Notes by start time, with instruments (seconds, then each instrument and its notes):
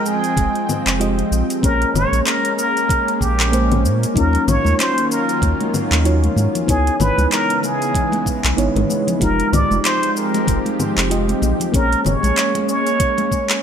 Already playing: analog synth pad F3 G#3 C4 D#5 G5, fm electric piano G#3 F4 D#5 G5
0.06 muted trumpet G#4, shaker
0.24 closed hi-hat, shaker
0.37 sub bass F1, kick, closed hi-hat, shaker
0.55 closed hi-hat
0.69 low conga, shaker
0.86 sub bass F1, clap, closed hi-hat, shaker
0.99 fm electric piano G#3 F4 G4 D#5, closed hi-hat, shaker
1.19 closed hi-hat
1.31 sub bass A#1, shaker
1.50 closed hi-hat, shaker
1.62 sub bass A#1, analog synth pad G#3 A#3 C#4, fm electric piano A#3 C#4 G#4 C#5, muted trumpet A#4, kick, closed hi-hat, shaker
1.82 closed hi-hat
1.94 sub bass F1, muted trumpet C#5, low conga, shaker
2.12 sub bass A#1, closed hi-hat, shaker
2.26 muted trumpet A#4, clap, closed hi-hat, shaker
2.45 closed hi-hat
2.57 muted trumpet A#4, shaker
2.77 closed hi-hat, shaker
2.89 kick, closed hi-hat, shaker
3.08 closed hi-hat
3.20 sub bass A#1, muted trumpet G4, kick, shaker
3.40 clap, closed hi-hat, shaker
3.52 fm electric piano G#3 A#3 C#4 C5, closed hi-hat, shaker
3.72 closed hi-hat, low conga
3.84 sub bass A#2, shaker
4.03 closed hi-hat, shaker
4.14 sub bass D#2, analog synth pad D#3 F#3 A#3 F4, fm electric piano F#3 C#4 D#4 F4, muted trumpet A#4, kick, closed hi-hat, shaker
4.33 closed hi-hat, muted conga
4.47 sub bass A#1, muted trumpet C#5, low conga, shaker
4.65 sub bass D#2, high conga, shaker
4.79 muted trumpet C5, clap, closed hi-hat, muted conga, shaker
4.98 closed hi-hat
5.11 muted trumpet A#4, shaker
5.29 closed hi-hat, shaker
5.42 sub bass D#2, kick, closed hi-hat, muted conga, shaker
5.61 closed hi-hat, high conga
5.74 low conga, shaker
5.91 sub bass D#2, clap, closed hi-hat, muted conga, shaker
6.04 fm electric piano F#3 D#4 F4 C#5, closed hi-hat, shaker
6.23 closed hi-hat, high conga
6.36 sub bass G#2, high conga, shaker
6.55 closed hi-hat, muted conga, low conga, shaker
6.67 sub bass C#2, analog synth pad C#3 E3 G#3 B3, fm electric piano B3 D#4 E4 C#5, muted trumpet G#4, kick, closed hi-hat, shaker
6.87 closed hi-hat
7.00 sub bass G#1, muted trumpet B4, muted conga, low conga, shaker
7.18 sub bass C#2, closed hi-hat, high conga, shaker
7.32 muted trumpet A#4, clap, closed hi-hat, shaker
7.50 closed hi-hat
7.63 muted trumpet G#4, muted conga, shaker
7.82 closed hi-hat, shaker
7.95 kick, closed hi-hat, shaker
8.12 closed hi-hat, muted conga, high conga
8.26 kick, shaker
8.44 sub bass B1, clap, closed hi-hat, shaker
8.57 sub bass G#1, fm electric piano B3 D#4 E4 C#5, closed hi-hat, shaker
8.76 sub bass G#1, closed hi-hat, muted conga, high conga, low conga
8.90 high conga, shaker
9.07 closed hi-hat, low conga, shaker
9.19 sub bass F1, analog synth pad F3 G#3 C4 G4, fm electric piano G#3 D#4 F4 G4, muted trumpet A#4, kick, closed hi-hat, muted conga, shaker
9.40 closed hi-hat
9.52 sub bass C2, muted trumpet D5, low conga, shaker
9.71 sub bass F1, high conga, shaker
9.84 muted trumpet C5, clap, closed hi-hat, muted conga, shaker
10.03 closed hi-hat
10.17 muted trumpet A#4, shaker
10.34 closed hi-hat, muted conga, shaker
10.47 sub bass F1, kick, closed hi-hat, shaker
10.66 closed hi-hat, high conga
10.80 low conga, shaker
10.97 sub bass F1, clap, closed hi-hat, muted conga, shaker
11.10 fm electric piano G#3 F4 G4 D#5, closed hi-hat, shaker
11.28 closed hi-hat, high conga
11.42 sub bass A#1, muted conga, high conga, shaker
11.60 closed hi-hat, low conga, shaker
11.72 sub bass A#1, analog synth pad G#3 A#3 C#4, fm electric piano A#3 C#4 G#4 C#5, muted trumpet A#4, kick, closed hi-hat, shaker
11.93 closed hi-hat
12.05 sub bass F1, muted trumpet C#5, muted conga, low conga, shaker
12.23 sub bass A#1, closed hi-hat, high conga, shaker
12.37 clap, closed hi-hat, shaker
12.55 closed hi-hat, muted conga
12.69 muted trumpet C#5, shaker
12.87 closed hi-hat, shaker
13.00 kick, closed hi-hat, shaker
13.18 closed hi-hat, muted conga, high conga
13.32 kick, shaker
13.50 clap, closed hi-hat, shaker